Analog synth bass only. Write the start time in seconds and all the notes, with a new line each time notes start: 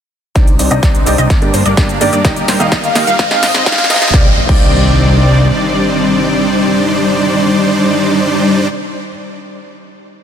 0.36 C2
0.59 C2
0.71 C2
0.83 C2
1.06 C2
1.18 C2
1.30 G1
1.54 G1
1.66 G1
1.77 G2
2.01 G1
2.13 G2
2.25 D#1
2.48 D#1
2.60 D#1
2.72 D#2
2.96 D#2
3.07 D#2
3.19 G#1
3.43 G#1
3.55 G#1
3.66 G#2
3.90 G#2
4.02 G#1
4.14 C2
4.49 C2